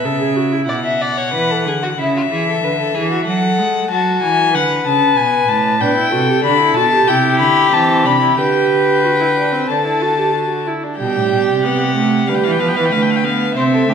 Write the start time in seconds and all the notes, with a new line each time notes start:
Already playing: E5
0.04 C#3 A4
0.21 G#4
0.36 F#4
0.53 E4
0.68 B2 D5 F#5
0.84 E5
1.01 D5
1.17 C#5
1.33 E3 B4
1.51 A4
1.65 D3 G#4
1.83 F#4
1.97 C#3 E4 E5
2.16 F#4
2.29 E3 G#4
2.48 A4
2.62 D3 B4
2.79 A4
2.94 E3 G#4
3.11 F#4
3.26 F#3 A4 F#5
3.58 G#3
3.90 F#3 F#4 A5
4.22 E3 G#5
4.54 D3 B4 F#5
4.85 C#3 A5
5.17 B2 G#5
5.48 A2 A5
5.80 B2 D4 B4 G5
5.97 E4
6.12 C3 F#4 A4
6.29 G4
6.43 D3 D4 B5
6.60 E4
6.75 B2 F#4 A5
6.93 G4
7.07 C3 E4 G4 G5
7.39 D3 B5
7.72 E3 C4 A5
8.05 C3 D4 B5
8.22 E4
8.37 D3 G4 B4 G5
9.04 F#4
9.20 E4
9.36 D4
9.52 C4
9.69 D3 D4 A4 A5
9.86 E4
10.02 F#4
10.19 G4
10.36 F#4
10.67 E4
10.84 D4
10.98 B2 G3 G4 G5
11.16 A2
11.32 B2
11.49 C3
11.63 B3 F#5
11.96 A3
12.27 D3 G3 B4 F5
12.35 G5
12.43 E3 F5
12.51 G5
12.60 F3 B3 F5
12.69 G5
12.76 E3 F5
12.85 G5
12.92 D3 A3 F5
13.02 G5
13.10 F5
13.16 G5
13.24 B3 F5
13.55 C3 C4 C5 E5
13.74 A4
13.88 D3 A3 G4